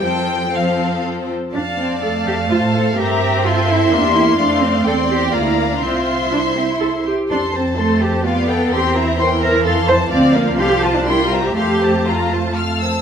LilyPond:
<<
  \new Staff \with { instrumentName = "Violin section" } { \time 3/4 \key f \major \tempo 4 = 124 g''4 f''4 r4 | a''4 a''2 | bes''4 c'''2~ | c'''4 c'''4 bes''4 |
c'''2~ c'''8 r8 | c'''8 a''8 c'''8 a''8 f''8 g''8 | c'''8 bes''8 c'''8 bes''8 c'''8 a''8 | d''8 f''8 c'''8 a''8 c'''8 bes''8 |
c'''8 a''8 bes''8 a''8 f'''8 e'''8 | }
  \new Staff \with { instrumentName = "Violin section" } { \time 3/4 \key f \major << { <a' c''>4 <a' c''>4. r8 | f''4 f''2 | e''4 e''2 | f''4 g''4 f''4 |
e''2~ e''8 r8 | c''8 a'8 c''8 a'8 d''8 f''8 | g''8 e''8 g''8 e''8 f''8 a''8 | f''8 d''8 f''8 a''8 g''8 e''8 |
f''8 a''8 f''8 a''8 f''8 a''8 | } \\ { r2. | d''2 c''4 | bes'4 a'4 g'4 | d''2. |
c''2~ c''8 r8 | a'8 c''8 a'8 c''8 g'8 b'8 | bes'8 c''8 bes'8 c''8 a'8 c''8 | d''8 bes'8 a'8 c''8 bes'8 c''8 |
a'8 c''8 a'8 c''8 a'8 c''8 | } >> }
  \new Staff \with { instrumentName = "Cello section" } { \time 3/4 \key f \major f,2~ f,8 r8 | d'8 c'8 a'8 g'8 f'8 a'8 | g'4 f'8 e'8 d'8 e'8 | d'8 c'8 a'8 g'8 f'16 e'8 d'16 |
f'4 e'4. r8 | d'8 c'8 a'8 g'8 f'8 a'8 | g'8 e'8 c''8 bes'8 a'8 c''8 | c'8 bes8 g'8 f'16 d'16 e'16 f'8 g'16 |
g'4 f'4 r4 | }
  \new Staff \with { instrumentName = "Viola section" } { \time 3/4 \key f \major <f c'>4 <f c'>4. r8 | r4 a2 | c'2 bes4 | a4 c'4 bes4 |
c'4 d'8 c'8 a'8 g'8 | r4 a4 b4 | c'4 e2 | f2 g4 |
a2~ a8 r8 | }
  \new Staff \with { instrumentName = "Double bass section" } { \clef bass \time 3/4 \key f \major r2. | f,2 a,4 | g,2 e,4 | f,4 e,4 d,4 |
c,2~ c,8 r8 | f,2. | e,2 f,4 | d,4 c,2 |
f,2~ f,8 r8 | }
>>